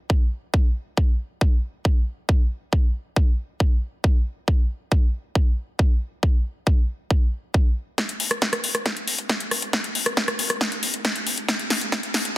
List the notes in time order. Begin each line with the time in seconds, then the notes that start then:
0.10 kick
0.54 kick
0.97 kick
1.41 kick
1.85 kick
2.29 kick
2.73 kick
3.16 kick
3.60 kick
4.04 kick
4.48 kick
4.92 kick
5.35 kick
5.79 kick
6.23 kick
6.67 kick
7.11 kick
7.54 kick
7.98 kick, snare, closed hi-hat
8.09 closed hi-hat
8.20 open hi-hat
8.31 cross-stick, closed hi-hat
8.42 kick, snare, closed hi-hat
8.53 cross-stick, closed hi-hat
8.64 open hi-hat
8.75 cross-stick, closed hi-hat
8.86 kick, snare, closed hi-hat
8.97 closed hi-hat
9.08 open hi-hat
9.18 closed hi-hat
9.29 kick, snare, closed hi-hat
9.40 closed hi-hat
9.51 cross-stick, open hi-hat
9.62 closed hi-hat
9.73 kick, snare, closed hi-hat
9.84 closed hi-hat
9.95 open hi-hat
10.06 cross-stick, closed hi-hat
10.17 kick, snare, closed hi-hat
10.28 cross-stick, closed hi-hat
10.39 open hi-hat
10.50 cross-stick, closed hi-hat
10.61 kick, snare, closed hi-hat
10.72 closed hi-hat
10.83 open hi-hat
10.94 closed hi-hat
11.05 kick, snare, closed hi-hat
11.16 closed hi-hat
11.27 open hi-hat
11.38 closed hi-hat
11.48 kick, snare, closed hi-hat
11.59 closed hi-hat
11.70 snare, open hi-hat
11.81 closed hi-hat
11.92 kick, snare, closed hi-hat
12.03 closed hi-hat
12.14 snare, open hi-hat
12.25 closed hi-hat